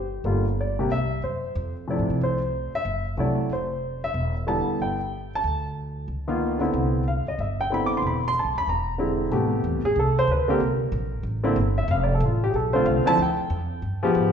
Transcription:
Already playing: G1 G4
0.24 G1 D3 G3 A#3 F4
0.61 D5
0.79 C3 G3 A#3 G4
0.89 C2 E5
1.22 F#2 C5
1.55 F2
1.88 C3 F3 A3 E4 D5
1.99 A2
2.10 C3
2.21 C2 C5
2.74 E5, muted upright bass stroke
2.85 F#1
3.17 C2 C3 F#3 A3 E4 D5
3.49 F1 C5
4.04 E5
4.14 E1
4.47 D3 G3 B3 E4 A5
4.67 muted upright bass stroke
4.80 G1 G5
5.35 A5
5.44 D2
6.08 C#2
6.28 D#3 A#3 B3 F4
6.59 D3 B3 C4 E4
6.73 C2
7.08 F5
7.27 C#2 D#5
7.39 G1 E5
7.61 G5
7.70 D3 B3 C4 E4 B5
7.86 D6
7.97 C6
8.02 E1
8.07 B5
8.28 C6
8.39 A5
8.45 B1
8.56 D#2 B5
8.67 E1 A#5
8.98 D3 G#3 C4 E4
9.32 A1 C3 A3 B3 G4
9.64 E2
9.74 C2
9.85 A1 G#4
9.96 C2 A4
10.19 C5
10.27 D2 B4
10.48 D3 A#3 C4 G4 A#4
10.60 C2
10.92 A#1
11.23 A1
11.43 D3 A#3 C4 E4
11.56 G1
11.78 E5
11.88 F1 F5
12.03 D5
12.15 A4
12.20 A1
12.25 F4
12.44 G4
12.51 B1 G#4
12.56 A4
12.73 D3 A3 C4 F4 C5
12.86 C2 F5
13.05 D3 F3 C4 E4 A5, muted upright bass stroke
13.18 D2
13.22 G5
13.50 F2
13.82 G2
14.03 F3 G#3 B3 G4
14.15 G#2

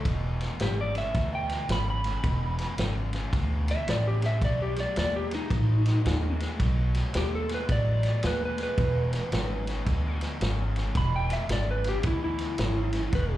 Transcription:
0.05 E1 E2 B2, kick, snare, ride
0.41 snare, ride
0.60 G#1 E2 C#3 G4, snare, ride
0.81 D5
0.94 E2 C#3 E5, snare, ride
1.15 D2 E2 B2, kick, snare, ride
1.35 G5
1.49 snare, ride
1.69 G#1 E2 C#3 B5, snare, ride
1.90 B5
2.04 E2 C#3, snare, ride
2.23 E1 E2 B2, kick, snare, ride
2.59 snare, ride
2.78 G#1 E2 C#3, snare, ride
3.13 E2 C#3, snare, ride
3.33 D2 E2 B2, kick, snare, ride
3.68 E5, snare, ride
3.87 A1 E2 C#3 D5, snare, ride
4.08 G4
4.20 E2 C#3, snare, ride
4.26 E5
4.42 B1 B2 F#3 D5, kick, snare, ride
4.62 G4
4.76 D5, snare, ride
4.96 D#2 B2 G#3 D5, snare, ride
5.16 G4
5.31 B2 G#3, snare, ride
5.35 D#4
5.50 A1 B2 F#3, kick, snare, ride
5.86 snare, ride
6.04 D#2 B2 G#3, snare, ride
6.39 B2 G#3, snare, ride
6.59 B1 B2 F#3, kick, snare, ride
6.95 snare, ride
7.13 D#2 B2 G#3, snare, ride
7.17 G4
7.35 A4
7.48 B2 G#3, snare, ride
7.54 B4
7.67 A1 B2 F#3, kick, snare, ride
7.72 D5
8.03 snare, ride
8.23 D#2 B2 G#3, snare, ride
8.27 B4
8.45 B4
8.57 B2 G#3, snare, ride
8.63 B4
8.77 E1 E2 B2, kick, snare, ride
9.13 snare, ride
9.32 G#1 E2 C#3, snare, ride
9.66 E2 C#3, snare, ride
9.85 D2 E2 B2, kick, snare, ride
10.21 snare, ride
10.40 G#1 E2 C#3, snare, ride
10.75 E2 C#3, snare, ride
10.95 E1 E2 B2 B5, kick, snare, ride
11.16 G5
11.30 E5, snare, ride
11.49 G#1 E2 C#3 D5, snare, ride
11.71 B4
11.84 E2 C#3, snare, ride
11.89 G4
12.03 D2 E2 B2 E4, kick, snare, ride
12.24 E4
12.39 snare, ride
12.58 G#1 E2 C#3, snare, ride
12.93 E2 C#3, snare, ride
13.13 E1 E2 B2 B4, kick, snare, ride
13.34 G4

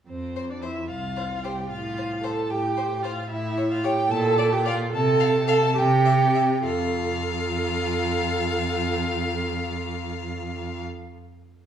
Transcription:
0.08 F2 C4 C5
0.36 C5
0.50 D4 D5
0.62 E4 C5 E5
0.90 C2 F4 F5
1.16 C5
1.44 G4 C5 G5
1.70 A2 F4 F5
1.98 C5
2.24 A4 C5 A5
2.50 A2 G4 G5
2.77 C5
3.03 F4 C5 F5
3.30 A2 E4 E5
3.57 C#5
3.71 F4 F5
3.83 G4 C#5 G5
4.10 A#2 A4 A5
4.38 D5
4.52 G4 G5
4.65 F4 D5 F5
4.93 C3 A4 A5
5.20 F5
5.48 A4 F5 A5
5.77 C3 G4 G5
6.05 E5
6.35 E5
6.64 F2 F4 A4 F5

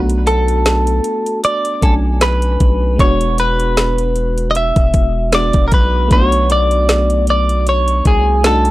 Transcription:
Already playing: B1 A3 B3 D4 F#4
0.10 closed hi-hat
0.27 A4, closed hi-hat
0.48 closed hi-hat
0.66 snare, closed hi-hat
0.87 closed hi-hat
1.04 closed hi-hat
1.26 closed hi-hat
1.44 D5, closed hi-hat
1.65 closed hi-hat
1.81 B1 A3 C#4 D4 A4 G#5, kick, closed hi-hat
2.21 B4, snare, closed hi-hat
2.42 closed hi-hat
2.60 B1, kick, closed hi-hat
2.96 E1 G#3 B3, kick, closed hi-hat
3.00 D4 F#4 C#5
3.21 closed hi-hat
3.38 B4, closed hi-hat
3.60 closed hi-hat
3.77 snare, closed hi-hat
3.98 closed hi-hat
4.16 closed hi-hat
4.38 closed hi-hat
4.51 D#5
4.55 E5, closed hi-hat
4.76 E1, kick, closed hi-hat
4.94 E1, kick, closed hi-hat
5.32 G#3 B3 D4 F#4 D5, snare, closed hi-hat
5.53 E1, kick, closed hi-hat
5.68 A#4, closed hi-hat
5.72 B1 B4, kick
6.08 B1 A3 B3, kick, closed hi-hat
6.12 D4 F4 C#5
6.21 F#4
6.32 closed hi-hat
6.50 D5, closed hi-hat
6.71 closed hi-hat
6.89 snare, closed hi-hat
7.10 closed hi-hat
7.27 D5, closed hi-hat
7.49 closed hi-hat
7.67 C#5, closed hi-hat
7.88 closed hi-hat
8.05 C2 G#4, kick, closed hi-hat
8.43 A3 D4 D#4 F#4 A4, snare, closed hi-hat
8.65 closed hi-hat

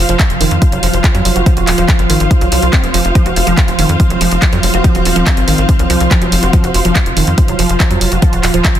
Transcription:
Already playing: F3 F4 C5 F5
0.09 F1 F3, closed hi-hat
0.19 kick, clap, closed hi-hat
0.30 F1, closed hi-hat
0.41 F1 D#3, open hi-hat
0.51 F2, closed hi-hat
0.62 F3, kick, closed hi-hat
0.72 F1 F#3, closed hi-hat
0.83 F1 F3, open hi-hat
0.93 F1 F3, closed hi-hat
1.04 F3, kick, clap, closed hi-hat
1.15 F2 F#3, closed hi-hat
1.25 F1 F#3, open hi-hat
1.36 F1 F#4, closed hi-hat
1.46 F3, kick, closed hi-hat
1.57 D#1 F#4, closed hi-hat
1.67 D#1 F4, clap, open hi-hat
1.78 D#1 F3, closed hi-hat
1.89 kick, clap, closed hi-hat
1.99 G#1, closed hi-hat
2.10 G#1 D#3, open hi-hat
2.20 G#1, closed hi-hat
2.31 F3, kick, closed hi-hat
2.41 C2 F#3, closed hi-hat
2.52 C2 F#3, open hi-hat
2.62 C2 F3, closed hi-hat
2.73 C4, kick, clap, closed hi-hat
2.84 F1 F3, closed hi-hat
2.94 F1 F3, open hi-hat
3.05 F1 F4, closed hi-hat
3.15 F3 C4, kick, closed hi-hat
3.26 F1 F#4, closed hi-hat
3.36 F1 F4, open hi-hat
3.47 F1 F3, closed hi-hat
3.58 kick, clap, closed hi-hat
3.68 F1, closed hi-hat
3.79 F1 D#3, open hi-hat
3.89 F2, closed hi-hat
4.00 F3, kick, closed hi-hat
4.10 F1 F#3, closed hi-hat
4.21 F1 F3, open hi-hat
4.31 F1 F3, closed hi-hat
4.42 F3, kick, clap, closed hi-hat
4.53 F2 F#3, closed hi-hat
4.63 F1 F#3, open hi-hat
4.74 F1 F#4, closed hi-hat
4.84 F3, kick, closed hi-hat
4.95 D#1 F#4, closed hi-hat
5.05 D#1 F4, open hi-hat
5.16 D#1 F3, closed hi-hat
5.27 kick, clap, closed hi-hat
5.37 G#1, closed hi-hat
5.48 G#1 D#3, open hi-hat
5.58 G#1, closed hi-hat
5.69 F3, kick, closed hi-hat
5.79 C2 F#3, closed hi-hat
5.90 C2 F3, open hi-hat
6.00 C2 F3, closed hi-hat
6.11 F3, kick, clap, closed hi-hat
6.22 F1 F#3, closed hi-hat
6.32 F1 F#3, open hi-hat
6.43 F1 F#4, closed hi-hat
6.53 F3 F4, kick, closed hi-hat
6.64 F1 F#4, closed hi-hat
6.74 F1 F4, open hi-hat
6.85 F1 F3, closed hi-hat
6.96 kick, clap, closed hi-hat
7.06 F1, closed hi-hat
7.17 F1 D#3, open hi-hat
7.27 F2, closed hi-hat
7.38 F3, kick, closed hi-hat
7.48 F1 F#3, closed hi-hat
7.59 F1 F3, open hi-hat
7.69 F1 F3, closed hi-hat
7.80 F3, kick, clap, closed hi-hat
7.91 F2 F#3, closed hi-hat
8.01 F1 F#3, open hi-hat
8.12 F1 F#4, closed hi-hat
8.22 F3, kick, closed hi-hat
8.33 D#1 F#4, closed hi-hat
8.43 D#1 F4, clap, open hi-hat
8.54 D#1 F3, closed hi-hat
8.65 kick, clap, closed hi-hat
8.75 G#1, closed hi-hat

